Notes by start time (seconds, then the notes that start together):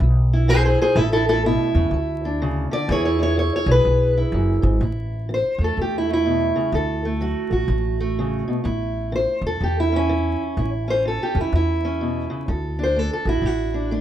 0.00 B1 E2
0.33 E4
0.48 E3 G#4 C5
0.65 G#4 C5
0.82 G#4 C5
0.96 A1 A2 E4 A4
1.12 E4 A4
1.29 A3 E4 A4
1.45 B2 E4
1.75 E2 C#3
1.91 D2 D3
2.25 D4
2.42 C#3
2.71 D3 D5
2.88 E2 E3 E4 G#4 C#5
3.05 C#5
3.19 E4 C#5
3.37 E3 C#5
3.56 C#5
3.66 B1 G#4
3.71 B4
3.85 B1 E2
4.17 E4
4.32 F#1 F#2
4.62 G#1 G#2
4.81 A1 A2 E4
5.29 E3
5.34 C5
5.58 E2 A3
5.64 A4
5.77 E2
5.81 G4
5.98 E4
6.09 A3 E4
6.26 B2
6.56 C#3
6.72 D2 D3 A4
7.05 A3
7.21 F#3 F#4
7.51 A1 F#4
7.68 A1 A2
8.00 A3
8.19 C#3
8.48 B2
8.64 A1 A2 E4
9.12 E3 C5
9.41 E2
9.47 A4
9.61 E2 G4
9.80 E4
9.92 C#4
10.09 E3
10.57 A1 A2 E4
10.88 C#4 C5
11.05 E3 A4
11.23 G4
11.34 E2 C#4
11.41 E4
11.53 E2 E4
11.85 C#4
12.01 B2
12.30 C#3
12.48 D2 D3 A4
12.79 D4
12.83 C5
12.96 A3 A4
13.13 A4
13.25 A1 E4 F#4
13.42 A1 A2 F#4
13.74 D4
13.91 A3 D4